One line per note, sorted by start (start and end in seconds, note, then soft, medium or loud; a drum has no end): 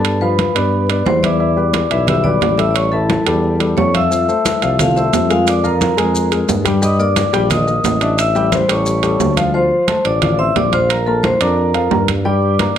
0.00 0.50 G2 medium
0.00 0.15 B3 medium
0.00 0.19 A4 medium
0.00 0.15 B4 medium
0.00 0.16 D5 medium
0.00 0.19 A5 medium
0.04 high conga soft
0.04 high timbale medium
0.21 0.49 F3 medium
0.21 0.49 F4 medium
0.21 1.02 B4 medium
0.21 0.50 F5 medium
0.21 1.02 B5 medium
0.21 high conga soft
0.39 high conga medium
0.39 high timbale medium
0.39 low timbale medium
0.55 1.02 G2 medium
0.55 0.83 B3 medium
0.55 0.83 B4 medium
0.55 0.83 D5 medium
0.55 high conga soft
0.55 high timbale medium
0.73 high conga soft
0.89 1.17 B3 medium
0.89 1.17 B4 medium
0.89 1.17 D5 medium
0.89 high conga soft
0.89 high timbale medium
1.06 1.85 E2 medium
1.06 1.13 C5 medium
1.06 1.14 C6 medium
1.06 high conga medium
1.06 low timbale medium
1.23 1.37 E3 medium
1.23 1.37 E4 medium
1.23 2.10 D5 medium
1.23 1.37 E5 medium
1.23 2.04 D6 medium
1.23 high conga medium
1.23 high timbale medium
1.40 1.54 E3 medium
1.40 1.54 E4 medium
1.40 1.54 E5 medium
1.40 high conga soft
1.57 1.85 G3 medium
1.57 1.85 G4 medium
1.57 1.85 B4 medium
1.57 high conga soft
1.74 high conga loud
1.74 high timbale medium
1.74 low timbale medium
1.91 2.38 B1 medium
1.91 2.05 E3 medium
1.91 2.05 E4 medium
1.91 2.05 E5 medium
1.91 high conga soft
1.91 high timbale medium
2.07 2.22 G3 medium
2.07 2.22 G4 medium
2.07 2.22 B4 medium
2.07 2.23 E5 loud
2.07 2.24 E6 medium
2.07 high conga soft
2.07 low conga medium
2.07 high timbale medium
2.24 2.52 G3 medium
2.24 2.53 G4 medium
2.24 2.53 B4 medium
2.24 2.56 D5 loud
2.24 2.56 D6 medium
2.24 high conga soft
2.24 low conga medium
2.41 3.21 A1 medium
2.41 high conga medium
2.41 high timbale medium
2.41 low timbale medium
2.58 2.86 G3 medium
2.58 2.87 G4 medium
2.58 2.87 A4 medium
2.58 2.70 E5 medium
2.58 2.71 E6 medium
2.58 high timbale medium
2.71 2.82 C#5 medium
2.71 2.75 D5 medium
2.75 2.83 C#6 medium
2.75 high conga soft
2.75 high timbale medium
2.92 3.20 E3 medium
2.92 3.20 E4 medium
2.92 3.56 A4 medium
2.92 3.20 E5 medium
2.92 3.57 A5 medium
2.92 high conga soft
3.10 high conga loud
3.10 high timbale medium
3.10 low timbale medium
3.26 3.74 E2 medium
3.26 3.54 G3 medium
3.26 3.54 G4 medium
3.26 3.55 A4 medium
3.26 high conga soft
3.26 high timbale medium
3.44 high conga soft
3.60 3.88 G3 medium
3.60 3.88 G4 medium
3.60 3.88 A4 medium
3.60 high conga soft
3.60 high timbale medium
3.77 4.30 F2 medium
3.77 3.93 C#5 loud
3.77 3.94 C#6 medium
3.77 high conga medium
3.77 low timbale medium
3.94 4.08 F3 medium
3.94 4.08 F4 medium
3.94 4.82 E5 loud
3.94 4.08 F5 medium
3.94 4.76 E6 medium
3.94 high conga medium
3.94 high timbale medium
4.11 4.25 F3 medium
4.11 4.25 F4 medium
4.11 4.26 F5 medium
4.11 high conga soft
4.11 maracas medium
4.28 4.56 A3 medium
4.28 4.56 A4 medium
4.28 4.57 C5 medium
4.28 high conga soft
4.28 maracas soft
4.45 high conga loud
4.45 high timbale medium
4.45 low timbale medium
4.45 maracas medium
4.62 5.10 C2 medium
4.62 4.76 F3 medium
4.62 4.76 F4 medium
4.62 4.76 F5 medium
4.62 high conga soft
4.62 high timbale medium
4.62 maracas soft
4.79 4.93 A3 medium
4.79 4.88 F4 medium
4.79 4.93 A4 medium
4.79 4.93 C5 medium
4.79 4.87 F5 loud
4.79 high conga soft
4.79 low conga medium
4.79 high timbale medium
4.79 maracas medium
4.96 5.24 A3 medium
4.96 5.24 A4 medium
4.96 5.24 C5 medium
4.96 5.28 E5 loud
4.96 5.28 E6 medium
4.96 high conga soft
4.96 maracas soft
5.13 5.92 F2 medium
5.13 high conga medium
5.13 high timbale medium
5.13 low timbale medium
5.13 maracas medium
5.30 5.58 G#3 medium
5.30 5.46 F4 medium
5.30 5.58 G#4 medium
5.30 5.58 A#4 medium
5.30 5.46 F5 medium
5.30 high timbale medium
5.30 maracas soft
5.47 5.55 D5 medium
5.47 5.55 D6 medium
5.47 high conga soft
5.47 high timbale medium
5.47 maracas medium
5.64 5.91 F3 medium
5.64 5.92 F4 medium
5.64 6.28 A#4 medium
5.64 5.92 F5 medium
5.64 6.28 A#5 medium
5.64 high conga soft
5.64 maracas soft
5.81 high conga loud
5.81 high timbale medium
5.81 low timbale medium
5.81 maracas medium
5.97 6.45 F2 medium
5.97 6.25 G#3 medium
5.97 6.26 G#4 medium
5.97 6.26 A#4 medium
5.97 high conga soft
5.97 high timbale medium
5.97 maracas soft
6.15 high conga soft
6.15 maracas medium
6.31 6.59 G#3 medium
6.31 6.59 G#4 medium
6.31 6.60 A#4 medium
6.31 high conga soft
6.31 high timbale medium
6.31 maracas soft
6.48 7.28 G2 medium
6.48 high conga medium
6.48 low timbale medium
6.48 maracas medium
6.65 6.79 G3 medium
6.65 6.79 G4 medium
6.65 6.79 G5 medium
6.65 high conga medium
6.65 high timbale medium
6.65 maracas soft
6.82 6.96 G3 medium
6.82 6.96 G4 medium
6.82 6.98 D#5 medium
6.82 6.96 G5 medium
6.82 6.99 D#6 medium
6.82 high conga soft
6.82 maracas medium
6.99 7.27 A#3 medium
6.99 7.27 A#4 medium
6.99 7.27 D5 medium
6.99 7.47 D5 medium
6.99 7.47 D6 medium
6.99 high conga soft
6.99 maracas soft
7.16 high conga loud
7.16 high timbale loud
7.16 low timbale medium
7.16 maracas medium
7.33 7.81 A#1 medium
7.33 7.47 G3 medium
7.33 7.47 G4 loud
7.33 7.47 G5 medium
7.33 high conga soft
7.33 high timbale medium
7.33 maracas soft
7.50 7.64 A#3 medium
7.50 7.64 A#4 medium
7.50 7.64 D5 medium
7.50 8.20 D#5 medium
7.50 8.14 D#6 medium
7.50 high conga soft
7.50 low conga medium
7.50 high timbale loud
7.50 maracas medium
7.67 7.95 A#3 medium
7.67 7.95 A#4 medium
7.67 7.95 D#5 medium
7.67 high conga soft
7.67 maracas soft
7.84 8.63 A1 medium
7.84 high conga medium
7.84 high timbale medium
7.84 low timbale medium
7.84 maracas medium
8.01 8.29 D4 medium
8.01 8.29 D5 medium
8.01 8.29 E5 medium
8.01 high timbale medium
8.01 maracas soft
8.18 8.53 E5 loud
8.18 8.50 E6 medium
8.18 high conga soft
8.18 high timbale loud
8.18 maracas medium
8.35 8.63 G3 medium
8.35 8.63 G4 medium
8.35 8.63 G5 medium
8.35 high conga soft
8.35 maracas soft
8.52 8.68 C5 medium
8.52 8.68 C6 medium
8.52 high conga loud
8.52 high timbale medium
8.52 low timbale medium
8.52 maracas medium
8.68 9.16 A1 medium
8.68 8.97 G3 medium
8.68 8.97 G4 medium
8.68 8.97 A4 medium
8.68 9.33 C#5 medium
8.68 9.34 C#6 medium
8.68 high conga soft
8.68 high timbale loud
8.68 maracas soft
8.86 high conga soft
8.86 maracas medium
9.03 9.31 G3 medium
9.03 9.31 G4 medium
9.03 9.31 A4 medium
9.03 high conga soft
9.03 high timbale medium
9.03 maracas soft
9.20 9.72 D2 medium
9.20 high conga medium
9.20 low timbale medium
9.20 maracas medium
9.37 9.51 F3 medium
9.37 9.51 F4 medium
9.37 9.51 F5 medium
9.37 high conga medium
9.37 high timbale medium
9.37 maracas soft
9.54 9.82 F3 medium
9.54 9.82 F4 medium
9.54 10.06 C5 medium
9.54 9.82 F5 medium
9.54 10.02 C6 medium
9.54 high conga soft
9.71 high conga soft
9.87 10.15 A3 medium
9.87 10.16 A4 medium
9.87 10.16 A5 medium
9.87 high conga medium
9.87 high timbale medium
9.87 low timbale medium
10.05 10.52 A1 medium
10.05 10.36 D5 loud
10.05 10.37 D6 medium
10.05 high conga soft
10.05 high timbale medium
10.22 10.36 F3 medium
10.22 10.36 F4 medium
10.22 10.36 F5 medium
10.22 high conga soft
10.22 low conga medium
10.22 high timbale medium
10.38 10.66 C4 medium
10.38 10.66 C5 medium
10.38 10.55 E5 loud
10.38 10.67 C6 medium
10.38 10.55 E6 medium
10.38 high conga soft
10.56 11.35 A#1 medium
10.56 10.73 D5 loud
10.56 10.72 D6 medium
10.56 high conga medium
10.56 high timbale medium
10.56 low timbale medium
10.72 11.00 F4 medium
10.72 10.88 C5 medium
10.72 11.00 F5 medium
10.72 10.89 C6 medium
10.72 11.01 F6 medium
10.72 high conga medium
10.72 high timbale medium
10.89 11.07 A#4 medium
10.89 11.06 A#5 medium
10.89 high conga soft
10.89 high timbale loud
11.06 11.35 A#3 medium
11.06 11.22 A4 medium
11.06 11.35 A#4 medium
11.06 11.23 A5 medium
11.06 11.35 A#5 medium
11.06 high conga soft
11.23 11.31 C5 medium
11.23 11.32 C6 medium
11.23 high conga loud
11.23 high timbale medium
11.23 low timbale medium
11.40 11.88 F2 medium
11.40 11.68 D4 medium
11.40 12.05 A#4 medium
11.40 11.68 D5 medium
11.40 12.05 A#5 medium
11.40 11.69 D6 medium
11.40 high conga soft
11.40 high timbale medium
11.58 high conga soft
11.74 11.88 F3 medium
11.74 11.89 F4 medium
11.74 11.89 F5 medium
11.74 high conga soft
11.74 high timbale medium
11.91 12.70 G2 medium
11.91 12.19 A#3 medium
11.91 12.19 A#4 medium
11.91 12.20 A#5 medium
11.91 high conga medium
11.91 low timbale medium
12.08 high conga medium
12.08 high timbale medium
12.25 12.53 G3 medium
12.25 12.53 G4 medium
12.25 12.73 D5 medium
12.25 12.53 G5 medium
12.25 12.73 D6 medium
12.25 high conga soft
12.42 high conga soft
12.59 12.78 A#3 medium
12.59 12.78 A#4 medium
12.59 12.78 A#5 medium
12.59 high conga medium
12.59 high timbale medium
12.59 low timbale medium